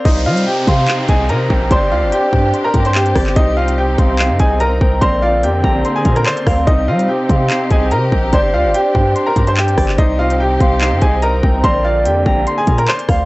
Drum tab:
HH |x--x--x-x-x-x---|x---x---x-xx-xo-|x--x--x-x-x-x---|x---x---x-xx-xo-|
CP |--------x-------|------------x--x|--------x-------|------------x---|
SD |----------------|--------------r-|----------------|-----------r--r-|
BD |o-----o---o---o-|o-----o---o---o-|o-----o---o---o-|o-----o---o---o-|

HH |x--x--x-x-x-x---|x---x---x-xx-xo-|x--x--x-x-x-x---|x---x---x-xx-xo-|
CP |--------x-------|------------x--x|--------x-------|------------x---|
SD |----------------|--------------r-|----------------|-----------r--r-|
BD |o-----o---o---o-|o-----o---o---o-|o-----o---o---o-|o-----o---o---o-|